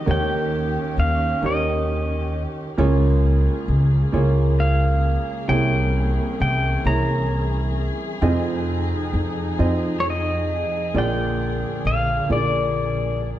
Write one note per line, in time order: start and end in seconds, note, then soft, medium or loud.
0.00 2.73 D#3 medium
0.00 2.73 G4 medium
0.00 0.12 D#5 medium
0.06 2.74 D#2 medium
0.06 0.76 D#2 medium
0.06 2.74 D#3 medium
0.06 1.26 A#3 medium
0.06 2.76 C#4 medium
0.06 1.26 D#4 medium
0.06 1.26 G4 medium
0.06 1.26 C#5 medium
0.11 0.99 G5 medium
0.98 1.32 D#2 medium
0.98 1.45 F5 medium
1.42 2.45 D#2 medium
1.42 2.61 A#3 medium
1.42 2.62 D#4 medium
1.42 2.62 G4 medium
1.42 2.62 C#5 medium
1.46 2.42 D#5 medium
2.77 3.47 C#2 medium
2.77 5.46 C#2 medium
2.77 5.45 C#3 medium
2.77 5.47 C#3 medium
2.77 8.18 A#3 medium
2.77 3.97 A#3 medium
2.77 3.97 F4 medium
2.77 13.39 G#4 medium
2.77 3.97 G#4 medium
2.77 3.97 C#5 medium
3.68 4.03 C#2 medium
4.12 5.16 C#2 medium
4.12 5.32 A#3 medium
4.12 5.32 F4 medium
4.12 5.32 G#4 medium
4.12 5.33 C#5 medium
4.60 5.53 F5 medium
5.48 6.18 C2 medium
5.48 8.18 C2 medium
5.48 8.18 C3 medium
5.48 8.20 E3 medium
5.48 6.68 A#3 medium
5.48 8.20 C#4 medium
5.48 6.68 E4 medium
5.48 6.68 G#4 medium
5.48 6.69 C#5 medium
5.48 6.40 G5 medium
6.40 6.75 C2 medium
6.40 6.88 G5 medium
6.84 7.89 C2 medium
6.84 8.05 A#3 medium
6.84 8.05 E4 medium
6.84 8.06 G#4 soft
6.84 8.06 C#5 medium
6.84 7.85 A#5 medium
8.21 10.91 F1 medium
8.21 8.91 F2 medium
8.21 10.91 F2 medium
8.21 10.93 F3 medium
8.21 9.42 C4 medium
8.21 10.94 D#4 medium
8.21 9.42 F4 medium
8.21 9.42 G#4 medium
8.21 9.43 D#5 medium
9.13 9.48 F2 medium
9.58 10.62 F2 medium
9.58 10.78 C4 medium
9.58 10.78 F4 medium
9.58 10.78 G#4 medium
9.58 10.79 D#5 medium
10.00 10.06 C#5 medium
10.10 11.01 D#5 medium
10.94 11.63 A#1 medium
10.94 13.39 A#1 medium
10.94 13.39 A#2 medium
10.94 13.39 D3 medium
10.94 12.13 A#3 medium
10.94 13.39 A#3 medium
10.94 12.14 F4 medium
10.94 12.14 G#4 medium
10.94 12.14 D5 medium
10.98 11.86 G5 medium
11.85 12.19 A#1 medium
11.85 12.28 F5 medium
12.29 13.33 A#1 medium
12.29 13.39 A#3 medium
12.29 13.39 F4 medium
12.29 13.39 G#4 medium
12.29 13.39 D5 medium
12.29 13.29 D5 medium